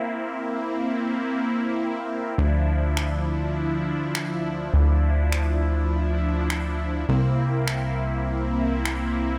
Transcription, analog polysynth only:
X:1
M:4/4
L:1/8
Q:1/4=102
K:Dm
V:1 name="Analog polysynth"
[B,CE]8 | [F,DE]8- | [F,DE]8 | [B,CE]8 |]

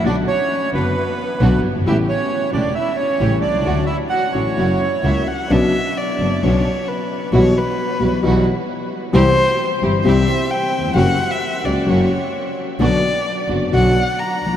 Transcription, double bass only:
X:1
M:4/4
L:1/8
Q:1/4=132
K:F#phr
V:1 name="Double bass" clef=bass
B,,, z2 F,,, z2 B,,, G,,, | A,,, z2 E,,, z2 A,,, =C,, | D,, z2 A,,, F,,, z C,, z | [K:Bm] B,,, z2 F,,, B,,, z3 |
B,,, z2 B,,, B,,, z3 | =C,, z2 G,,, C,, z3 | F,,, z2 C,, F,,, z3 | B,,, z2 F,,, B,,, z2 B,,, |]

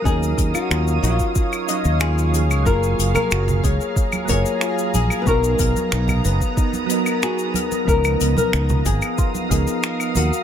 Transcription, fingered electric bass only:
X:1
M:4/4
L:1/16
Q:1/4=92
K:C#mix
V:1 name="Fingered electric bass" clef=bass
D,,2 D,, z D,,2 A,,, z4 D,,4 C,, | F,,,2 F,,, z F,,,2 C,, z3 F,,, z3 A,,, z | B,,,2 B,,, z B,,,2 F,,, z8 z | C,,2 C,, z C,,2 G,,, z3 C,, z3 D,, z |]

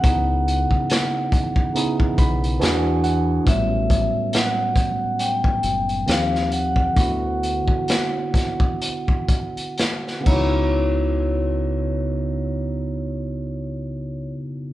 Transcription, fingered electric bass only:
X:1
M:4/4
L:1/16
Q:"Swing 16ths" 1/4=67
K:Dlyd
V:1 name="Fingered electric bass" clef=bass
C,,3 z6 z B,,,2 E,,4 | A,,,3 z6 z F,,,2 ^D,,4 | D,,3 z8 z3 C,,2- | C,,16 |]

